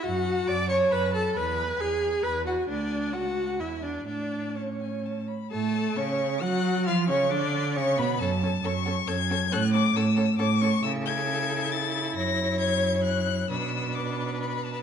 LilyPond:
<<
  \new Staff \with { instrumentName = "Violin" } { \time 3/4 \key a \major \tempo 4 = 135 r8 a''4 a''4 a''8 | gis''8 gis''4 gis''4 gis''8 | gis''4 a''4 gis''4 | a''4 a''8 gis''8 a''8 b''8 |
\key fis \minor a''4 cis'''4 fis'''4 | eis'''8 cis'''8 d'''4 cis'''8 b''8 | a''4 cis'''4 gis'''4 | fis'''8 d'''8 e'''4 d'''8 cis'''8 |
\key a \major e'''8 gis'''4. a'''4 | ais'''4 gis'''4 fis'''4 | e'''4 d'''4 b''8 a''8 | }
  \new Staff \with { instrumentName = "Violin" } { \time 3/4 \key a \major fis''4 d'''8 cis'''8 b''8 a''8 | b''4 gis''4 b''8 fis''8 | d''4 fis''4 e''8 d''8 | d''4 cis''4. r8 |
\key fis \minor a'4 cis''4 fis''4 | eis''8 cis''8 d''4 cis''8 b'8 | a'8 a'8 a'8 a'8 a'8 a'8 | a'8 a'8 a'8 a'8 a'8 a'8 |
\key a \major a'2. | cis''2. | b'2. | }
  \new Staff \with { instrumentName = "Viola" } { \time 3/4 \key a \major fis'4 d''8 cis''8 b'8 a'8 | b'4 gis'4 b'8 fis'8 | d'4 fis'4 e'8 d'8 | d'4 cis'4. r8 |
\key fis \minor a4 cis'4 fis'4 | eis'8 cis'8 d'4 cis'8 b8 | cis'8 cis'8 cis'8 cis'8 cis'8 cis'8 | cis'8 cis'8 cis'8 cis'8 cis'8 cis'8 |
\key a \major e'2.~ | e'2. | d'2. | }
  \new Staff \with { instrumentName = "Cello" } { \clef bass \time 3/4 \key a \major fis,4 fis,4 fis,4 | e,4 e,4 e,4 | d,4 cis,4 e,4 | a,2~ a,8 r8 |
\key fis \minor a,4 cis4 fis4 | eis8 cis8 d4 cis8 b,8 | fis,4 fis,4 fis,4 | a,4 a,4 a,4 |
\key a \major cis2. | fis,2. | b,2. | }
>>